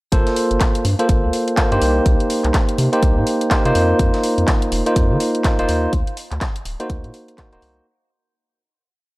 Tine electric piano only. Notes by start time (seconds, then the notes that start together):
0.12 A#3 F4 A4 C5
0.99 A#3 F4 A4 C5
1.57 A#3 F4 A4 C5
1.72 A#3 D#4 G4 C5
2.93 A#3 D#4 G4 C5
3.51 A#3 D#4 G4 C5
3.65 A#3 D#4 F4 C5
4.86 A#3 D#4 F4 C5
5.44 A#3 D#4 F4 C5
5.59 A#3 D#4 F4 C5
6.80 A#3 D#4 F#4 C5
7.38 A#3 D#4 F#4 C5
7.52 A#3 D#4 F#4 C5